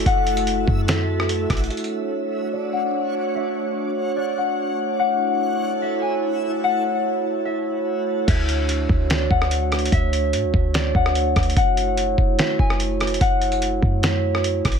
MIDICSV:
0, 0, Header, 1, 6, 480
1, 0, Start_track
1, 0, Tempo, 410959
1, 70, Time_signature, 4, 2, 24, 8
1, 17278, End_track
2, 0, Start_track
2, 0, Title_t, "Harp"
2, 0, Program_c, 0, 46
2, 0, Note_on_c, 0, 76, 92
2, 0, Note_on_c, 0, 80, 91
2, 74, Note_on_c, 0, 78, 109
2, 1021, Note_off_c, 0, 76, 0
2, 1025, Note_on_c, 0, 76, 88
2, 1101, Note_off_c, 0, 80, 0
2, 1952, Note_off_c, 0, 78, 0
2, 1984, Note_off_c, 0, 76, 0
2, 1989, Note_on_c, 0, 76, 99
2, 2955, Note_on_c, 0, 74, 89
2, 3188, Note_on_c, 0, 78, 79
2, 3908, Note_off_c, 0, 76, 0
2, 3913, Note_on_c, 0, 76, 102
2, 4859, Note_off_c, 0, 74, 0
2, 4864, Note_on_c, 0, 74, 75
2, 5066, Note_off_c, 0, 78, 0
2, 5113, Note_on_c, 0, 78, 74
2, 5828, Note_off_c, 0, 78, 0
2, 5832, Note_on_c, 0, 78, 103
2, 5926, Note_off_c, 0, 76, 0
2, 6798, Note_on_c, 0, 76, 87
2, 7021, Note_off_c, 0, 74, 0
2, 7028, Note_on_c, 0, 80, 85
2, 7710, Note_off_c, 0, 78, 0
2, 7753, Note_on_c, 0, 78, 109
2, 8701, Note_off_c, 0, 76, 0
2, 8706, Note_on_c, 0, 76, 83
2, 8780, Note_off_c, 0, 80, 0
2, 9631, Note_off_c, 0, 78, 0
2, 9663, Note_off_c, 0, 76, 0
2, 9668, Note_on_c, 0, 76, 108
2, 10634, Note_on_c, 0, 74, 92
2, 10869, Note_on_c, 0, 78, 83
2, 11587, Note_off_c, 0, 76, 0
2, 11592, Note_on_c, 0, 76, 110
2, 12541, Note_off_c, 0, 74, 0
2, 12546, Note_on_c, 0, 74, 85
2, 12747, Note_off_c, 0, 78, 0
2, 12794, Note_on_c, 0, 78, 79
2, 13507, Note_off_c, 0, 78, 0
2, 13512, Note_on_c, 0, 78, 109
2, 13605, Note_off_c, 0, 76, 0
2, 14478, Note_on_c, 0, 76, 92
2, 14703, Note_off_c, 0, 74, 0
2, 14708, Note_on_c, 0, 80, 93
2, 15389, Note_off_c, 0, 78, 0
2, 15430, Note_on_c, 0, 78, 117
2, 16379, Note_off_c, 0, 76, 0
2, 16384, Note_on_c, 0, 76, 88
2, 16460, Note_off_c, 0, 80, 0
2, 17278, Note_off_c, 0, 76, 0
2, 17278, Note_off_c, 0, 78, 0
2, 17278, End_track
3, 0, Start_track
3, 0, Title_t, "Synth texture"
3, 0, Program_c, 1, 99
3, 0, Note_on_c, 1, 57, 81
3, 0, Note_on_c, 1, 66, 75
3, 0, Note_on_c, 1, 76, 92
3, 1950, Note_off_c, 1, 76, 0
3, 1951, Note_off_c, 1, 57, 0
3, 1951, Note_off_c, 1, 66, 0
3, 1991, Note_on_c, 1, 73, 69
3, 1993, Note_on_c, 1, 62, 77
3, 1994, Note_on_c, 1, 78, 84
3, 5792, Note_off_c, 1, 73, 0
3, 5793, Note_off_c, 1, 62, 0
3, 5827, Note_on_c, 1, 64, 78
3, 5827, Note_on_c, 1, 69, 69
3, 9625, Note_off_c, 1, 78, 0
3, 9630, Note_off_c, 1, 64, 0
3, 9630, Note_off_c, 1, 69, 0
3, 17278, End_track
4, 0, Start_track
4, 0, Title_t, "Glass harmonica"
4, 0, Program_c, 2, 92
4, 0, Note_on_c, 2, 57, 76
4, 0, Note_on_c, 2, 64, 66
4, 0, Note_on_c, 2, 66, 69
4, 0, Note_on_c, 2, 69, 81
4, 1943, Note_off_c, 2, 69, 0
4, 1944, Note_off_c, 2, 57, 0
4, 1952, Note_off_c, 2, 64, 0
4, 1952, Note_off_c, 2, 66, 0
4, 1991, Note_on_c, 2, 62, 60
4, 1992, Note_on_c, 2, 57, 69
4, 1992, Note_on_c, 2, 66, 60
4, 1992, Note_on_c, 2, 73, 75
4, 5792, Note_off_c, 2, 62, 0
4, 5793, Note_off_c, 2, 66, 0
4, 5828, Note_on_c, 2, 66, 62
4, 5829, Note_on_c, 2, 64, 62
4, 9624, Note_off_c, 2, 57, 0
4, 9624, Note_off_c, 2, 73, 0
4, 9630, Note_off_c, 2, 66, 0
4, 9631, Note_off_c, 2, 64, 0
4, 9670, Note_on_c, 2, 57, 70
4, 9670, Note_on_c, 2, 62, 67
4, 9670, Note_on_c, 2, 66, 67
4, 9670, Note_on_c, 2, 73, 81
4, 13471, Note_off_c, 2, 57, 0
4, 13471, Note_off_c, 2, 73, 0
4, 13472, Note_off_c, 2, 62, 0
4, 13509, Note_on_c, 2, 57, 71
4, 13509, Note_on_c, 2, 73, 83
4, 13510, Note_on_c, 2, 64, 68
4, 17278, Note_off_c, 2, 57, 0
4, 17278, Note_off_c, 2, 64, 0
4, 17278, Note_off_c, 2, 66, 0
4, 17278, Note_off_c, 2, 73, 0
4, 17278, End_track
5, 0, Start_track
5, 0, Title_t, "808-style bass"
5, 0, Program_c, 3, 38
5, 70, Note_on_c, 3, 30, 116
5, 761, Note_off_c, 3, 30, 0
5, 789, Note_on_c, 3, 42, 105
5, 1711, Note_off_c, 3, 42, 0
5, 1752, Note_on_c, 3, 33, 108
5, 1981, Note_off_c, 3, 33, 0
5, 9670, Note_on_c, 3, 38, 115
5, 10361, Note_off_c, 3, 38, 0
5, 10388, Note_on_c, 3, 38, 114
5, 10850, Note_off_c, 3, 38, 0
5, 10869, Note_on_c, 3, 38, 107
5, 11561, Note_off_c, 3, 38, 0
5, 11590, Note_on_c, 3, 38, 110
5, 12070, Note_on_c, 3, 45, 97
5, 12087, Note_off_c, 3, 38, 0
5, 12188, Note_on_c, 3, 38, 96
5, 12206, Note_off_c, 3, 45, 0
5, 12303, Note_off_c, 3, 38, 0
5, 12308, Note_on_c, 3, 38, 107
5, 12770, Note_off_c, 3, 38, 0
5, 12788, Note_on_c, 3, 38, 108
5, 13250, Note_off_c, 3, 38, 0
5, 13271, Note_on_c, 3, 38, 108
5, 13501, Note_off_c, 3, 38, 0
5, 13509, Note_on_c, 3, 30, 120
5, 14201, Note_off_c, 3, 30, 0
5, 14226, Note_on_c, 3, 30, 103
5, 14459, Note_off_c, 3, 30, 0
5, 14708, Note_on_c, 3, 30, 111
5, 15400, Note_off_c, 3, 30, 0
5, 15429, Note_on_c, 3, 30, 117
5, 16121, Note_off_c, 3, 30, 0
5, 16147, Note_on_c, 3, 42, 106
5, 17070, Note_off_c, 3, 42, 0
5, 17111, Note_on_c, 3, 33, 107
5, 17278, Note_off_c, 3, 33, 0
5, 17278, End_track
6, 0, Start_track
6, 0, Title_t, "Drums"
6, 70, Note_on_c, 9, 36, 119
6, 72, Note_on_c, 9, 42, 80
6, 187, Note_off_c, 9, 36, 0
6, 189, Note_off_c, 9, 42, 0
6, 311, Note_on_c, 9, 42, 61
6, 428, Note_off_c, 9, 42, 0
6, 432, Note_on_c, 9, 42, 58
6, 549, Note_off_c, 9, 42, 0
6, 549, Note_on_c, 9, 42, 73
6, 666, Note_off_c, 9, 42, 0
6, 789, Note_on_c, 9, 36, 100
6, 905, Note_off_c, 9, 36, 0
6, 1030, Note_on_c, 9, 42, 80
6, 1038, Note_on_c, 9, 38, 118
6, 1147, Note_off_c, 9, 42, 0
6, 1155, Note_off_c, 9, 38, 0
6, 1399, Note_on_c, 9, 37, 92
6, 1510, Note_on_c, 9, 42, 85
6, 1516, Note_off_c, 9, 37, 0
6, 1627, Note_off_c, 9, 42, 0
6, 1752, Note_on_c, 9, 36, 102
6, 1752, Note_on_c, 9, 42, 54
6, 1758, Note_on_c, 9, 37, 100
6, 1832, Note_off_c, 9, 42, 0
6, 1832, Note_on_c, 9, 42, 53
6, 1869, Note_off_c, 9, 36, 0
6, 1875, Note_off_c, 9, 37, 0
6, 1912, Note_off_c, 9, 42, 0
6, 1912, Note_on_c, 9, 42, 54
6, 1991, Note_off_c, 9, 42, 0
6, 1991, Note_on_c, 9, 42, 51
6, 2071, Note_off_c, 9, 42, 0
6, 2071, Note_on_c, 9, 42, 51
6, 2151, Note_off_c, 9, 42, 0
6, 2151, Note_on_c, 9, 42, 49
6, 2268, Note_off_c, 9, 42, 0
6, 9670, Note_on_c, 9, 36, 124
6, 9671, Note_on_c, 9, 42, 77
6, 9671, Note_on_c, 9, 49, 110
6, 9787, Note_off_c, 9, 36, 0
6, 9787, Note_off_c, 9, 49, 0
6, 9788, Note_off_c, 9, 42, 0
6, 9913, Note_on_c, 9, 42, 72
6, 10029, Note_off_c, 9, 42, 0
6, 10149, Note_on_c, 9, 42, 70
6, 10266, Note_off_c, 9, 42, 0
6, 10389, Note_on_c, 9, 36, 102
6, 10505, Note_off_c, 9, 36, 0
6, 10629, Note_on_c, 9, 42, 72
6, 10637, Note_on_c, 9, 38, 116
6, 10746, Note_off_c, 9, 42, 0
6, 10754, Note_off_c, 9, 38, 0
6, 10869, Note_on_c, 9, 36, 95
6, 10986, Note_off_c, 9, 36, 0
6, 10999, Note_on_c, 9, 37, 92
6, 11110, Note_on_c, 9, 42, 82
6, 11115, Note_off_c, 9, 37, 0
6, 11226, Note_off_c, 9, 42, 0
6, 11351, Note_on_c, 9, 42, 41
6, 11357, Note_on_c, 9, 37, 99
6, 11431, Note_off_c, 9, 42, 0
6, 11431, Note_on_c, 9, 42, 52
6, 11474, Note_off_c, 9, 37, 0
6, 11510, Note_off_c, 9, 42, 0
6, 11510, Note_on_c, 9, 42, 70
6, 11590, Note_on_c, 9, 36, 119
6, 11591, Note_off_c, 9, 42, 0
6, 11591, Note_on_c, 9, 42, 78
6, 11707, Note_off_c, 9, 36, 0
6, 11707, Note_off_c, 9, 42, 0
6, 11833, Note_on_c, 9, 42, 72
6, 11949, Note_off_c, 9, 42, 0
6, 12068, Note_on_c, 9, 42, 72
6, 12185, Note_off_c, 9, 42, 0
6, 12308, Note_on_c, 9, 36, 100
6, 12425, Note_off_c, 9, 36, 0
6, 12548, Note_on_c, 9, 42, 76
6, 12556, Note_on_c, 9, 38, 114
6, 12665, Note_off_c, 9, 42, 0
6, 12673, Note_off_c, 9, 38, 0
6, 12788, Note_on_c, 9, 36, 94
6, 12905, Note_off_c, 9, 36, 0
6, 12917, Note_on_c, 9, 37, 93
6, 13028, Note_on_c, 9, 42, 86
6, 13034, Note_off_c, 9, 37, 0
6, 13145, Note_off_c, 9, 42, 0
6, 13268, Note_on_c, 9, 42, 38
6, 13271, Note_on_c, 9, 36, 104
6, 13274, Note_on_c, 9, 37, 99
6, 13348, Note_off_c, 9, 42, 0
6, 13348, Note_on_c, 9, 42, 52
6, 13387, Note_off_c, 9, 36, 0
6, 13391, Note_off_c, 9, 37, 0
6, 13428, Note_off_c, 9, 42, 0
6, 13428, Note_on_c, 9, 42, 68
6, 13509, Note_off_c, 9, 42, 0
6, 13509, Note_on_c, 9, 36, 117
6, 13509, Note_on_c, 9, 42, 83
6, 13625, Note_off_c, 9, 36, 0
6, 13625, Note_off_c, 9, 42, 0
6, 13751, Note_on_c, 9, 42, 69
6, 13868, Note_off_c, 9, 42, 0
6, 13986, Note_on_c, 9, 42, 73
6, 14103, Note_off_c, 9, 42, 0
6, 14227, Note_on_c, 9, 36, 97
6, 14344, Note_off_c, 9, 36, 0
6, 14468, Note_on_c, 9, 42, 76
6, 14476, Note_on_c, 9, 38, 113
6, 14584, Note_off_c, 9, 42, 0
6, 14592, Note_off_c, 9, 38, 0
6, 14708, Note_on_c, 9, 36, 93
6, 14825, Note_off_c, 9, 36, 0
6, 14837, Note_on_c, 9, 37, 93
6, 14949, Note_on_c, 9, 42, 84
6, 14954, Note_off_c, 9, 37, 0
6, 15066, Note_off_c, 9, 42, 0
6, 15189, Note_on_c, 9, 42, 40
6, 15195, Note_on_c, 9, 37, 103
6, 15270, Note_off_c, 9, 42, 0
6, 15270, Note_on_c, 9, 42, 53
6, 15312, Note_off_c, 9, 37, 0
6, 15349, Note_off_c, 9, 42, 0
6, 15349, Note_on_c, 9, 42, 66
6, 15429, Note_on_c, 9, 36, 121
6, 15430, Note_off_c, 9, 42, 0
6, 15430, Note_on_c, 9, 42, 82
6, 15546, Note_off_c, 9, 36, 0
6, 15546, Note_off_c, 9, 42, 0
6, 15669, Note_on_c, 9, 42, 60
6, 15786, Note_off_c, 9, 42, 0
6, 15789, Note_on_c, 9, 42, 60
6, 15906, Note_off_c, 9, 42, 0
6, 15907, Note_on_c, 9, 42, 75
6, 16024, Note_off_c, 9, 42, 0
6, 16148, Note_on_c, 9, 36, 98
6, 16265, Note_off_c, 9, 36, 0
6, 16388, Note_on_c, 9, 42, 78
6, 16396, Note_on_c, 9, 38, 114
6, 16505, Note_off_c, 9, 42, 0
6, 16513, Note_off_c, 9, 38, 0
6, 16758, Note_on_c, 9, 37, 87
6, 16869, Note_on_c, 9, 42, 84
6, 16875, Note_off_c, 9, 37, 0
6, 16986, Note_off_c, 9, 42, 0
6, 17110, Note_on_c, 9, 42, 54
6, 17112, Note_on_c, 9, 36, 100
6, 17116, Note_on_c, 9, 37, 101
6, 17191, Note_off_c, 9, 42, 0
6, 17191, Note_on_c, 9, 42, 56
6, 17228, Note_off_c, 9, 36, 0
6, 17233, Note_off_c, 9, 37, 0
6, 17278, Note_off_c, 9, 42, 0
6, 17278, End_track
0, 0, End_of_file